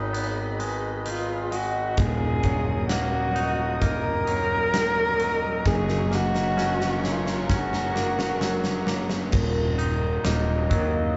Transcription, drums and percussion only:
0.14 closed hi-hat
0.60 closed hi-hat
1.06 closed hi-hat
1.52 closed hi-hat
1.97 kick, closed hi-hat
2.43 kick, closed hi-hat
2.89 snare, closed hi-hat
3.36 closed hi-hat
3.82 kick, closed hi-hat
4.27 closed hi-hat
4.74 snare, closed hi-hat
5.20 closed hi-hat
5.65 kick, snare
5.89 snare
6.12 snare
6.35 snare
6.58 snare
6.81 snare
7.04 snare
7.27 snare
7.50 kick, snare
7.73 snare
7.96 snare
8.19 snare
8.41 snare
8.64 snare
8.87 snare
9.10 snare
9.32 kick, crash
9.79 closed hi-hat
10.25 snare, closed hi-hat
10.71 kick, closed hi-hat

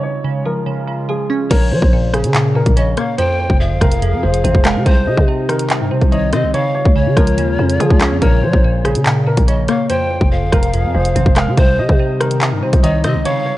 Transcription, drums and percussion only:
1.51 kick, closed hi-hat, crash
1.82 kick
2.14 cross-stick, closed hi-hat
2.24 closed hi-hat
2.34 clap, closed hi-hat
2.66 kick, closed hi-hat
2.77 closed hi-hat
2.97 cross-stick, closed hi-hat
3.18 closed hi-hat
3.50 kick
3.81 kick, cross-stick, closed hi-hat
3.92 closed hi-hat
4.02 closed hi-hat
4.34 closed hi-hat
4.45 closed hi-hat
4.55 kick
4.65 cross-stick, clap, closed hi-hat
4.86 kick, closed hi-hat
5.18 kick
5.49 cross-stick, closed hi-hat
5.59 closed hi-hat
5.70 clap, closed hi-hat
6.02 kick, closed hi-hat
6.12 closed hi-hat
6.33 cross-stick, closed hi-hat
6.54 closed hi-hat
6.85 kick
7.17 kick, cross-stick, closed hi-hat
7.27 closed hi-hat
7.38 closed hi-hat
7.69 closed hi-hat
7.80 closed hi-hat
7.90 kick
8.01 cross-stick, clap, closed hi-hat
8.22 kick, closed hi-hat
8.53 kick
8.85 cross-stick, closed hi-hat
8.95 closed hi-hat
9.06 clap, closed hi-hat
9.37 kick, closed hi-hat
9.48 closed hi-hat
9.68 cross-stick, closed hi-hat
9.90 closed hi-hat
10.21 kick
10.53 kick, cross-stick, closed hi-hat
10.63 closed hi-hat
10.74 closed hi-hat
11.05 closed hi-hat
11.16 closed hi-hat
11.26 kick
11.36 cross-stick, clap, closed hi-hat
11.58 kick, closed hi-hat
11.89 kick
12.20 cross-stick, closed hi-hat
12.31 closed hi-hat
12.41 clap, closed hi-hat
12.73 kick, closed hi-hat
12.84 closed hi-hat
13.04 cross-stick, closed hi-hat
13.26 closed hi-hat

